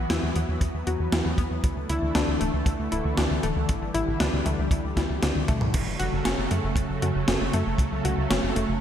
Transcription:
Already playing: analog synth pad E3 F#3 B3
0.10 analog synth bass E2, synth arpeggio sound E4, snare, closed hi-hat
0.23 analog synth bass E2
0.36 analog synth bass E2, synth arpeggio sound B3, closed hi-hat
0.49 analog synth bass E2
0.61 analog synth bass E2, kick, closed hi-hat
0.74 analog synth bass E2
0.87 analog synth bass E2, synth arpeggio sound F#4, closed hi-hat
1.00 analog synth bass E2
1.12 analog synth bass E2, synth arpeggio sound E4, snare, closed hi-hat
1.25 analog synth bass E2
1.38 analog synth bass E2, synth arpeggio sound B3, kick, closed hi-hat
1.51 analog synth bass E2
1.64 analog synth bass D2, analog synth pad D3 E3 A3, kick, closed hi-hat
1.77 analog synth bass D2
1.89 analog synth bass D2, synth arpeggio sound E4, closed hi-hat
2.02 analog synth bass D2
2.15 analog synth bass D2, synth arpeggio sound D4, snare, closed hi-hat
2.28 analog synth bass D2
2.41 analog synth bass D1, synth arpeggio sound A3, closed hi-hat
2.54 analog synth bass D2
2.66 analog synth bass D2, kick, closed hi-hat
2.79 analog synth bass D2
2.92 analog synth bass D1, synth arpeggio sound E4, closed hi-hat
3.05 analog synth bass D2
3.17 analog synth bass D2, synth arpeggio sound D4, snare, closed hi-hat
3.31 analog synth bass D2
3.43 analog synth bass D1, synth arpeggio sound A3, closed hi-hat
3.56 analog synth bass D2
3.69 analog synth bass A1, analog synth pad G3, kick, closed hi-hat
3.82 analog synth bass A1
3.94 analog synth bass A1, synth arpeggio sound E4, closed hi-hat
4.08 analog synth bass A1
4.20 analog synth bass D2, synth arpeggio sound D4, snare, closed hi-hat
4.33 analog synth bass D2
4.46 analog synth bass D2, synth arpeggio sound A3, closed hi-hat
4.59 analog synth bass D2
4.71 analog synth bass D2, kick, closed hi-hat
4.85 analog synth bass D2
4.97 analog synth bass D2, synth arpeggio sound E4, kick, snare, closed hi-hat
5.10 analog synth bass D2
5.23 analog synth bass D2, synth arpeggio sound D4, snare, closed hi-hat
5.35 analog synth bass D2, high tom
5.48 analog synth bass D2, synth arpeggio sound A3, kick, closed hi-hat, mid tom
5.61 analog synth bass D2, mid tom
5.74 analog synth bass F#1, analog synth pad C#3 F#3 A3, kick, closed hi-hat, crash
5.87 analog synth bass F#1
6.00 analog synth bass F#1, synth arpeggio sound F#4, closed hi-hat
6.13 analog synth bass F#1
6.25 analog synth bass F#1, synth arpeggio sound C#4, snare, closed hi-hat
6.38 analog synth bass F#1
6.51 analog synth bass F#2, synth arpeggio sound A3, closed hi-hat
6.64 analog synth bass F#1
6.76 analog synth bass F#1, kick, closed hi-hat
6.90 analog synth bass F#1
7.02 analog synth bass F#2, synth arpeggio sound F#4, closed hi-hat
7.15 analog synth bass F#1
7.28 analog synth bass F#1, synth arpeggio sound C#4, snare, closed hi-hat
7.41 analog synth bass F#1
7.53 analog synth bass F#2, synth arpeggio sound A3, closed hi-hat
7.67 analog synth bass F#1
7.78 analog synth bass C#2, kick, closed hi-hat
7.92 analog synth bass C#2
8.05 analog synth bass C#2, synth arpeggio sound F#4, closed hi-hat
8.18 analog synth bass C#2
8.30 analog synth bass F#1, synth arpeggio sound C#4, snare, closed hi-hat
8.43 analog synth bass F#1
8.56 analog synth bass F#1, synth arpeggio sound A3, closed hi-hat
8.69 analog synth bass F#1

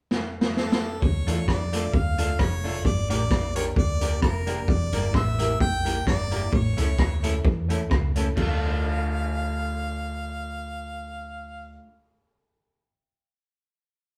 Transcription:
0.11 snare
0.41 snare
0.57 harmonica A4, snare
0.72 snare
1.02 fingered electric bass D2, clean electric guitar D3, harmonica C#5, kick
1.27 fingered electric bass E2, clean electric guitar E3 A3 D4 F4 A4, upright piano A3 D4 F4 A4, closed hi-hat
1.48 fingered electric bass F2, clean electric guitar F3, harmonica D5, kick, cross-stick
1.72 upright piano A3 D4 F4 A4, clean electric guitar A3 D4 F4 A4, closed hi-hat
1.93 fingered electric bass D2, clean electric guitar D3, harmonica F5, kick
2.18 upright piano A3 D4 F4 A4, clean electric guitar A3 D4 F4 A4, closed hi-hat
2.39 fingered electric bass F1, clean electric guitar F2, harmonica C#5, kick, cross-stick
2.64 upright piano A3 D4 F4 A4, clean electric guitar A3 D4 F4 A4, open hi-hat
2.85 fingered electric bass G1, clean electric guitar G2, harmonica D5, kick, hi-hat pedal
3.09 fingered electric bass A1, clean electric guitar A2 A#3 D4 G4 A#4, upright piano A#3 D4 G4 A#4, harmonica D5, closed hi-hat
3.31 fingered electric bass A#1, clean electric guitar A#2, kick, cross-stick
3.55 upright piano A#3 D4 G4 A#4, clean electric guitar A#3 D4 G4 A#4, harmonica C#5, closed hi-hat
3.76 fingered electric bass D2, clean electric guitar D3, upright piano G4 A#4, harmonica D5, kick
4.01 upright piano A#3 D4 G4 A#4, clean electric guitar A#3 D4 G4 A#4, closed hi-hat
4.22 fingered electric bass F1, clean electric guitar F2, harmonica A#4, kick, cross-stick
4.46 upright piano A#3 D4 G4 A#4, clean electric guitar A#3 D4 G4 A#4, closed hi-hat
4.68 fingered electric bass E1, clean electric guitar E2, harmonica D5, kick
4.92 fingered electric bass G1, clean electric guitar G2 A#3 E4 G4 A#4, upright piano A#3 E4 G4 A#4, closed hi-hat
5.13 fingered electric bass A1, clean electric guitar A2, harmonica E5, kick, cross-stick
5.39 clean electric guitar A#3 E4 G4 A#4, upright piano A#3 E4 G4 A#4, closed hi-hat
5.59 fingered electric bass A#1, clean electric guitar A#2, harmonica G5, kick
5.85 clean electric guitar A#3 E4 G4 A#4, upright piano A#3 E4 G4 A#4, closed hi-hat
6.06 fingered electric bass G1, clean electric guitar G2, harmonica D5, kick, cross-stick
6.31 clean electric guitar A#3 E4 G4 A#4, upright piano A#3 E4 G4 A#4, closed hi-hat
6.52 fingered electric bass A1, clean electric guitar A2, harmonica C#5, kick
6.77 fingered electric bass C#2, clean electric guitar C#3 A3 C#4 E4 A4, upright piano A3 C#4 E4 A4, closed hi-hat
6.98 fingered electric bass D2, clean electric guitar D3, kick, cross-stick
7.23 upright piano A3 C#4 E4 A4, clean electric guitar A3 C#4 E4 A4, closed hi-hat
7.44 fingered electric bass E2, clean electric guitar E3, upright piano E4 A4, kick
7.68 upright piano A3 C#4 E4 A4, clean electric guitar A3 C#4 E4 A4, closed hi-hat
7.90 fingered electric bass C#2, clean electric guitar C#3, kick, cross-stick
8.15 upright piano A3 C#4 E4 A4, clean electric guitar A3 C#4 E4 A4, closed hi-hat
8.36 fingered electric bass D2, clean electric guitar A3 D4 F4, upright piano A3 D4 F4 A4, harmonica F5, kick, crash
8.41 clean electric guitar A4

